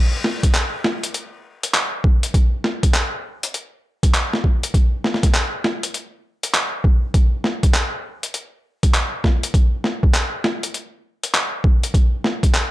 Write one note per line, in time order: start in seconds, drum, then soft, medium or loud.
0.24 snare soft
0.43 kick loud
0.43 closed hi-hat medium
0.54 clap loud
0.54 closed hi-hat medium
0.84 snare medium
1.03 closed hi-hat medium
1.14 closed hi-hat medium
1.63 closed hi-hat medium
1.74 clap loud
1.74 closed hi-hat medium
2.04 kick loud
2.23 closed hi-hat medium
2.34 kick loud
2.34 closed hi-hat medium
2.64 snare soft
2.83 kick loud
2.83 closed hi-hat medium
2.94 clap loud
2.94 closed hi-hat medium
3.43 closed hi-hat medium
3.54 closed hi-hat medium
4.03 kick loud
4.03 closed hi-hat medium
4.14 clap loud
4.14 closed hi-hat medium
4.33 snare soft
4.44 kick medium
4.63 closed hi-hat medium
4.74 kick loud
4.74 closed hi-hat medium
5.04 snare soft
5.14 snare soft
5.23 kick loud
5.23 snare soft
5.23 closed hi-hat medium
5.34 clap loud
5.34 closed hi-hat medium
5.64 snare soft
5.83 closed hi-hat medium
5.94 closed hi-hat medium
6.43 closed hi-hat medium
6.54 clap loud
6.54 closed hi-hat medium
6.84 kick loud
7.14 kick loud
7.14 closed hi-hat medium
7.44 snare soft
7.63 kick loud
7.63 closed hi-hat medium
7.74 clap loud
7.74 closed hi-hat medium
8.23 closed hi-hat medium
8.34 closed hi-hat medium
8.83 kick loud
8.83 closed hi-hat medium
8.94 clap loud
8.94 closed hi-hat medium
9.24 kick medium
9.24 snare soft
9.43 closed hi-hat medium
9.54 kick loud
9.54 closed hi-hat medium
9.84 snare soft
10.03 kick loud
10.14 clap loud
10.14 closed hi-hat medium
10.44 snare medium
10.63 closed hi-hat medium
10.74 closed hi-hat medium
11.23 closed hi-hat medium
11.34 clap loud
11.34 closed hi-hat medium
11.64 kick loud
11.83 closed hi-hat medium
11.94 kick loud
11.94 closed hi-hat medium
12.24 snare soft
12.43 kick loud
12.43 closed hi-hat medium
12.54 clap loud
12.54 closed hi-hat medium